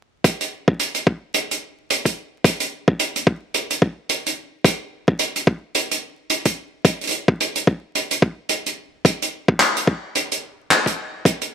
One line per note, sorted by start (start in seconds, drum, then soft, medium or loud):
0.24 kick loud
0.24 closed hi-hat medium
0.41 closed hi-hat medium
0.68 kick loud
0.80 closed hi-hat medium
0.95 closed hi-hat medium
1.07 kick medium
1.34 closed hi-hat medium
1.51 closed hi-hat medium
1.90 closed hi-hat medium
2.05 kick medium
2.05 closed hi-hat medium
2.44 kick loud
2.44 closed hi-hat medium
2.60 closed hi-hat medium
2.88 kick loud
3.00 closed hi-hat medium
3.16 closed hi-hat medium
3.27 kick loud
3.54 closed hi-hat medium
3.70 closed hi-hat medium
3.82 kick loud
4.09 closed hi-hat medium
4.26 closed hi-hat medium
4.65 kick loud
4.65 closed hi-hat medium
5.08 kick loud
5.19 closed hi-hat medium
5.36 closed hi-hat medium
5.47 kick loud
5.75 closed hi-hat medium
5.91 closed hi-hat medium
6.30 closed hi-hat medium
6.45 kick medium
6.45 closed hi-hat medium
6.85 kick loud
6.85 closed hi-hat medium
7.01 closed hi-hat soft
7.04 closed hi-hat soft
7.07 closed hi-hat soft
7.09 closed hi-hat soft
7.11 closed hi-hat soft
7.28 kick loud
7.40 closed hi-hat medium
7.56 closed hi-hat medium
7.67 kick loud
7.95 closed hi-hat medium
8.11 closed hi-hat medium
8.22 kick loud
8.49 closed hi-hat medium
8.66 closed hi-hat medium
9.05 kick loud
9.05 closed hi-hat medium
9.22 closed hi-hat medium
9.48 kick loud
9.60 clap loud
9.60 closed hi-hat medium
9.77 closed hi-hat medium
9.87 kick loud
10.15 closed hi-hat medium
10.32 closed hi-hat medium
10.71 clap loud
10.71 closed hi-hat medium
10.86 kick medium
10.86 closed hi-hat medium
11.25 kick loud
11.25 closed hi-hat medium
11.42 closed hi-hat medium